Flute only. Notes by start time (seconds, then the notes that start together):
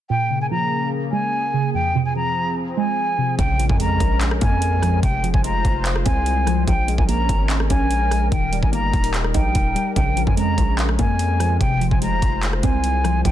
0.10 G5
0.41 G#5
0.51 A#5
1.12 G#5
1.74 G5
2.05 G#5
2.16 A#5
2.77 G#5
3.39 G5
3.69 G#5
3.80 A#5
4.42 G#5
5.03 G5
5.34 G#5
5.45 A#5
6.06 G#5
6.68 G5
6.98 G#5
7.08 A#5
7.70 G#5
8.32 G5
8.63 G#5
8.73 A#5
9.35 G5
9.96 G5
10.27 G#5
10.38 A#5
11.00 G#5
11.60 G5
11.91 G#5
12.02 A#5
12.63 G#5
13.25 G5